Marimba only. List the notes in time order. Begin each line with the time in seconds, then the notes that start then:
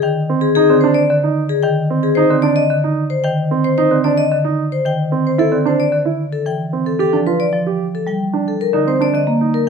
0.03 D#3
0.70 D3
1.10 D3
1.64 D#3
2.31 D3
2.70 D3
3.24 D#3
3.91 D3
4.31 D3
4.85 D#3
5.52 D3
5.93 D3
6.46 E3
7.13 F3
7.53 F3
8.07 G3
8.73 D3
9.14 D3
9.27 A#3